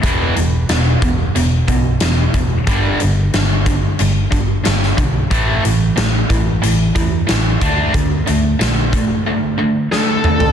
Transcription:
<<
  \new Staff \with { instrumentName = "Lead electric guitar" } { \time 4/4 \key d \lydian \tempo 4 = 91 r1 | r1 | r1 | r2. a'4 | }
  \new Staff \with { instrumentName = "Overdriven electric guitar" } { \clef bass \time 4/4 \key d \lydian <e, b, e>8 <e, b,>8 <e, b,>8 <e, b,>8 <e, b,>8 <e, b,>8 <e, b,>8 <e, b,>8 | <g, d g>8 <g, d>8 <g, d>8 <g, d>8 <g, d>8 <g, d>8 <g, d>8 <g, d>8 | <a, e a>8 <a, e>8 <a, e>8 <a, e>8 <a, e>8 <a, e>8 <a, e>8 <d a d'>8 | <d a>8 <d a>8 <d a>8 <d a>8 <d a>8 <d a>8 <d a>8 <d a>8 | }
  \new Staff \with { instrumentName = "Picked electric bass" } { \clef bass \time 4/4 \key d \lydian e,,8 e,,8 e,,8 e,,8 e,,8 b,,8 e,,8 e,,8 | g,,8 g,,8 g,,4 g,,8 g,,8 g,,8 b,,8 | a,,8 a,,8 a,,8 a,,8 a,,8 e,8 a,,8 d,8 | d,8 d,8 ais,,4 r2 | }
  \new DrumStaff \with { instrumentName = "Drums" } \drummode { \time 4/4 <hh bd>8 hh8 <hh sn>8 <hh bd>8 hh8 <hh bd>8 <hh sn>8 <hh bd>8 | <hh bd>8 hh8 <hh sn>8 <hh bd>8 hh8 <hh bd>8 <hh sn>16 sn16 <hh bd>8 | <hh bd>8 hh8 <hh sn>8 <hh bd>8 hh8 <hh bd>8 <hh sn>8 <hh bd>8 | <hh bd>8 hh8 <hh sn>8 <hh bd>8 r4 sn8 toml16 tomfh16 | }
>>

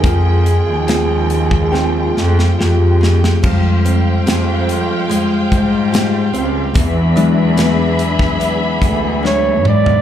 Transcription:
<<
  \new Staff \with { instrumentName = "String section" } { \time 4/4 \key f \minor \tempo 4 = 72 <aes f' g''>1 | <c'' f'' g''>1 | <d' gis' e'' b''>1 | }
  \new Staff \with { instrumentName = "Flugelhorn" } { \time 4/4 \key f \minor aes'2. r4 | r1 | r2. des''8 d''8 | }
  \new Staff \with { instrumentName = "Tine electric piano" } { \time 4/4 \key f \minor f4 <f' aes' g''>4 <f' aes' g''>4 <f' g' aes'>4 | <g aes f'>8 r2. r8 | r8 <ges gis d'>2~ <ges gis d'>8 <ges gis d'>8 r8 | }
  \new Staff \with { instrumentName = "Nylon-string guitar" } { \time 4/4 \key f \minor <f aes'>4 <c' aes'>4 <c' aes'>4. aes'8 | f8 c'8 <c' g' aes'>4 aes4 g'8 c'8 | e8 d'8 <d' gis' b'>4 b4 gis'8 d'8 | }
  \new Staff \with { instrumentName = "Cello section" } { \clef bass \time 4/4 \key f \minor f,8. ees,4.~ ees,16 f,8 f,4 | f,4 f,4~ f,16 r16 aes,4 des,8 | e,2~ e,16 r16 d,4 gis,8 | }
  \new DrumStaff \with { instrumentName = "Drums" } \drummode { \time 4/4 <hh bd>8 hh8 <hh sn>8 hh16 bd16 sn8 sn16 sn16 sn8 sn16 sn16 | <cymc bd>8 hh8 <hh sn>8 hh8 hh8 <hh bd>8 <hh sn>8 hh8 | <hh bd>8 hh8 <hh sn>8 hh16 <bd sn>16 hh8 <hh bd>8 sn8 toml16 tomfh16 | }
>>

